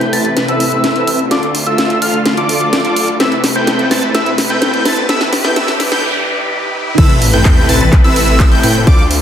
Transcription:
Already playing: A1 C3 A3 C4 E4 A4 B4 G5 G6, riser
0.01 closed hi-hat
0.13 A1 C4 E4 A4 B4 A5 A6, open hi-hat
0.25 closed hi-hat
0.37 snare, closed hi-hat
0.48 A1 C4 E4 A4 B4 E5 E6, closed hi-hat
0.60 open hi-hat
0.72 closed hi-hat
0.84 snare, closed hi-hat
0.96 A1 C4 E4 A4 B4 E5 E6, closed hi-hat
1.07 open hi-hat
1.19 closed hi-hat
1.31 D2 D3 A3 F4 A4 D5 D6, snare, closed hi-hat
1.43 closed hi-hat
1.55 open hi-hat
1.66 D2 F4 A4 E5 E6, closed hi-hat
1.78 snare, closed hi-hat
1.90 closed hi-hat
2.02 D2 F4 A4 F5 F6, open hi-hat
2.14 closed hi-hat
2.26 snare, closed hi-hat
2.37 D2 F4 A4 D5 D6, closed hi-hat
2.49 open hi-hat
2.61 closed hi-hat
2.73 snare, closed hi-hat
2.85 D2 F4 A4 D5 D6, closed hi-hat
2.96 open hi-hat
3.08 closed hi-hat
3.20 A1 C3 A3 C4 E4 A4 B4 E5 E6, snare, closed hi-hat
3.32 closed hi-hat
3.44 snare, open hi-hat
3.56 A1 C4 E4 A4 B4 G5 G6, closed hi-hat
3.67 snare, closed hi-hat
3.79 closed hi-hat
3.91 A1 C4 E4 A4 B4 A5 A6, snare, open hi-hat
4.03 closed hi-hat
4.15 A1 C4 E4 A4 B4 E5 E6, snare, closed hi-hat
4.26 closed hi-hat
4.38 snare, open hi-hat
4.50 A1 C4 E4 A4 B4 G5 G6, closed hi-hat
4.62 snare, closed hi-hat
4.74 closed hi-hat
4.85 A1 C4 E4 A4 B4 A5 A6, snare, open hi-hat
4.97 closed hi-hat
5.09 E1 E3 B3 E4 G4 A4 B4 E5 E6, snare, closed hi-hat, noise sweep
5.21 snare, closed hi-hat
5.33 snare, open hi-hat
5.44 E1 B3 E4 A4 B4 G5 G6, snare, closed hi-hat
5.56 E1 B3 E4 A4 B4 E5 E6, snare, closed hi-hat
5.68 snare, closed hi-hat
5.80 snare, open hi-hat
5.92 B3 E4 A4 B4 G5 G6, snare
6.98 A1 C3 A3 C4 E4 A4 B4 E5 E6, kick, closed hi-hat, crash, sub drop
7.10 closed hi-hat
7.22 open hi-hat
7.33 A1 C4 E4 A4 B4 G5 G6
7.45 kick, clap, closed hi-hat
7.57 closed hi-hat
7.69 A1 C4 E4 A4 B4 A5 A6, open hi-hat
7.81 closed hi-hat
7.93 kick, clap, closed hi-hat
8.04 A1 C4 E4 A4 B4 E5 E6, closed hi-hat
8.16 open hi-hat
8.28 closed hi-hat
8.40 kick, clap, closed hi-hat
8.52 A1 C4 E4 A4 B4 G5 G6, closed hi-hat
8.63 A2 C4 E4 A4 B4 G5 G6, open hi-hat
8.87 D2 D3 F4 A4 D5 D6, kick, closed hi-hat
8.99 closed hi-hat
9.11 open hi-hat

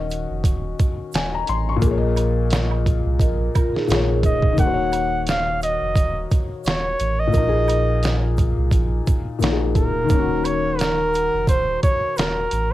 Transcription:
Already playing: D#1 D#3 C#4 F#4 D#5
0.10 closed hi-hat, shaker
0.30 F1
0.44 D#1, kick, closed hi-hat, shaker
0.79 kick, closed hi-hat, shaker
1.12 D#1 G#5, snare, closed hi-hat, shaker
1.34 A#5
1.47 A1 C6, closed hi-hat, shaker
1.69 C#6
1.76 A#2
1.81 A#1 A#3, kick, closed hi-hat, shaker
1.86 G#4
1.91 C#5
1.98 D#5
2.16 closed hi-hat, high woodblock, shaker
2.50 snare, closed hi-hat, shaker
2.71 high woodblock
2.86 kick, closed hi-hat, shaker
3.06 C2
3.19 A#1 A#4 D#5, kick, closed hi-hat, shaker
3.55 F4 A#4, kick, closed hi-hat, high woodblock, shaker
3.74 D#4 G#4, snare
3.87 A#1 A#2 A#3 F4 A#4, closed hi-hat, shaker
3.92 G#4 C#5, snare
4.09 D#4 G#4
4.23 D1 D#5, kick, closed hi-hat, shaker
4.42 kick
4.53 D#3
4.57 D#1 A#3 F#5, kick, closed hi-hat, shaker
4.62 F#4
4.67 C5
4.74 C#5
4.92 closed hi-hat, high woodblock, shaker
5.27 F5, snare, closed hi-hat, shaker
5.62 D#5, closed hi-hat, shaker
5.82 F1
5.96 D#1, kick, closed hi-hat, shaker
6.31 kick, closed hi-hat, shaker
6.64 D#1 C#5, snare, closed hi-hat, shaker
6.99 A1, closed hi-hat, shaker
7.20 D#5
7.27 A#2
7.33 A#1 A#3, kick, closed hi-hat, shaker
7.37 D#4
7.42 F#4
7.49 G#4
7.68 closed hi-hat, high woodblock, shaker
8.03 snare, closed hi-hat, shaker
8.37 kick, closed hi-hat, shaker
8.58 C2
8.71 A#1, kick, closed hi-hat, shaker
9.07 kick, closed hi-hat, shaker
9.39 A#1 A#2 A#3, closed hi-hat, shaker
9.43 D#4 F#4, snare
9.52 G#4
9.75 D1 A#4, kick, closed hi-hat, shaker
10.04 D#3
10.09 D#1 A#3, kick, closed hi-hat, shaker
10.14 C#4
10.19 F#4
10.44 C#5, closed hi-hat, high woodblock, shaker
10.79 A#4, snare, closed hi-hat, shaker
11.14 closed hi-hat, shaker
11.34 F1
11.47 D#1 C5, kick, closed hi-hat, shaker
11.83 C#5, kick, closed hi-hat, shaker
12.17 D#1 A#4, snare, closed hi-hat, shaker
12.51 A1, closed hi-hat, shaker

